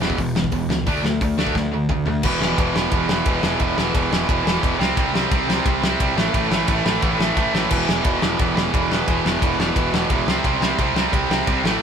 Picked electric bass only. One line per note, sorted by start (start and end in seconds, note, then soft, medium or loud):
0.01 0.16 E1 medium
0.18 0.48 E1 loud
0.52 0.67 E1 medium
0.68 0.84 C#2 medium
0.86 1.02 D2 loud
1.02 1.18 D2 medium
1.21 1.36 D2 loud
1.37 1.53 D2 medium
1.55 1.85 D2 medium
1.89 2.04 D2 medium
2.06 2.21 D2 medium
2.24 2.35 E1 loud
2.40 2.52 E1 loud
2.58 2.70 E1 loud
2.75 2.86 E1 medium
2.92 3.04 E1 loud
3.09 3.21 E1 medium
3.26 3.38 E1 loud
3.43 3.55 E1 loud
3.60 3.72 E1 loud
3.78 3.89 E1 medium
3.94 4.06 E1 loud
4.12 4.23 E1 loud
4.29 4.40 E1 medium
4.45 4.57 E1 medium
4.63 4.75 E1 loud
4.80 4.92 C2 medium
4.97 5.09 C2 loud
5.13 5.25 C2 medium
5.31 5.43 C2 loud
5.47 5.59 C2 medium
5.65 5.77 C2 medium
5.82 5.94 C2 medium
6.00 6.12 C2 loud
6.16 6.28 A1 loud
6.34 6.46 A1 loud
6.51 6.62 A1 medium
6.68 6.80 A1 loud
6.85 6.97 A1 medium
7.03 7.14 A1 medium
7.20 7.31 A1 loud
7.36 7.48 A1 loud
7.54 7.66 A1 medium
7.71 7.83 E1 loud
7.89 8.00 E1 medium
8.05 8.17 E1 medium
8.23 8.34 E1 medium
8.40 8.51 E1 loud
8.56 8.68 E1 medium
8.74 8.85 E1 medium
8.90 9.02 E1 medium
9.08 9.20 E1 loud
9.25 9.37 E1 medium
9.42 9.53 E1 medium
9.59 9.71 E1 medium
9.76 9.87 E1 loud
9.93 10.05 E1 medium
10.10 10.22 E1 loud
10.26 10.38 C2 medium
10.44 10.56 C2 loud
10.60 10.73 C2 medium
10.79 10.91 C2 loud
10.94 11.06 C2 medium
11.12 11.24 C2 medium
11.30 11.42 C2 medium
11.47 11.59 C2 loud
11.64 11.76 A1 loud